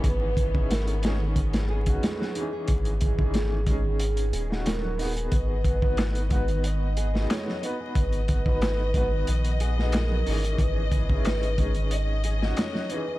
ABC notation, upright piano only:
X:1
M:4/4
L:1/16
Q:1/4=91
K:C#dor
V:1 name="Upright piano"
[E,CDG]3 [CDEG]3 [CDG]4- [CDG] [CDF]3 [E,CDG]2- | [E,CDG]3 [E,CDG]3 [CDG]4- [CDG] [CDF]3 [B,DFG]2- | [B,DFG]3 [B,DFB]3 [B,DFB]4- [B,DFB] [B,DFG]3 [B,DFB]2- | [B,DFB]3 [B,DFB]3 [B,DFB]4- [B,DFB] [B,DFG]3 [E,CDG]2- |
[E,CDG]3 [CDEG]3 [CDG]4- [CDG] [CDF]3 [E,CDG]2 |]